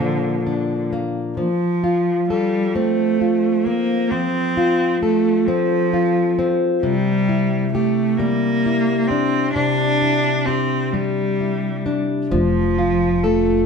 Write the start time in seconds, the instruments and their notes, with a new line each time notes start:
Already playing: steel-string acoustic guitar A#2 A#3 D4 A#4, cello D3
0.00 steel-string acoustic guitar F3
0.47 steel-string acoustic guitar D4
0.93 steel-string acoustic guitar A#3
1.37 steel-string acoustic guitar F3, cello F3
1.84 steel-string acoustic guitar F4
2.29 cello G3, steel-string acoustic guitar A4
2.75 cello A3, steel-string acoustic guitar C4
3.21 steel-string acoustic guitar F4
3.66 cello A#3, steel-string acoustic guitar C4
4.12 steel-string acoustic guitar F3, cello C4
4.57 steel-string acoustic guitar F4
5.02 cello A3, steel-string acoustic guitar A4
5.48 cello F3, steel-string acoustic guitar C4
5.94 steel-string acoustic guitar F4
6.39 steel-string acoustic guitar C4
6.83 steel-string acoustic guitar C3, cello G3
7.29 steel-string acoustic guitar E4
7.73 cello A3, steel-string acoustic guitar G4
8.17 steel-string acoustic guitar G3, cello A#3
8.66 steel-string acoustic guitar E4
9.08 cello C4, steel-string acoustic guitar D4
9.54 steel-string acoustic guitar C3, cello D4
10.02 steel-string acoustic guitar E4
10.46 cello C4, steel-string acoustic guitar G4
10.92 cello G3, steel-string acoustic guitar G3
11.40 steel-string acoustic guitar E4
11.86 steel-string acoustic guitar D4
12.31 upright bass F1, cello F3, steel-string acoustic guitar F3
12.78 steel-string acoustic guitar F4
13.23 cello A3, steel-string acoustic guitar A4